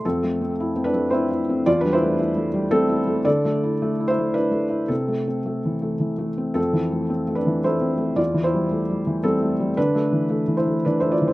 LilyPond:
<<
  \new Staff \with { instrumentName = "Felt piano" } { \time 3/4 \key d \dorian \tempo 4 = 111 <c' a'>4. <d' b'>8 <e' c''>4 | <f' d''>16 <d' b'>16 <e' c''>4. <c' a'>4 | <a' d''>4. <e' c''>8 <d' b'>4 | <c' a'>2~ <c' a'>8 r8 |
<c' a'>4. <d' b'>8 <e' c''>4 | <f' d''>8 <e' c''>4. <c' a'>4 | <d' b'>4. <e' c''>8 <d' b'>16 <e' c''>16 <f' d''>16 <e' c''>16 | }
  \new Staff \with { instrumentName = "Felt piano" } { \time 3/4 \key d \dorian \tuplet 3/2 { f,8 a8 c'8 e'8 c'8 a8 c'8 e'8 c'8 } | \tuplet 3/2 { e,8 g8 a8 e'8 a8 g8 a8 e'8 a8 } | \tuplet 3/2 { d8 a8 e'8 a8 e'8 a8 e'8 a8 e'8 } | \tuplet 3/2 { c8 a8 c'8 a8 e8 a8 e8 a8 c'8 } |
\tuplet 3/2 { f,8 e8 a8 c'8 a8 e8 a8 c'8 a8 } | \tuplet 3/2 { e,8 e8 g8 a8 g8 e8 g8 a8 g8 } | \tuplet 3/2 { d8 a8 e8 a8 e8 a8 e8 a8 e8 } | }
>>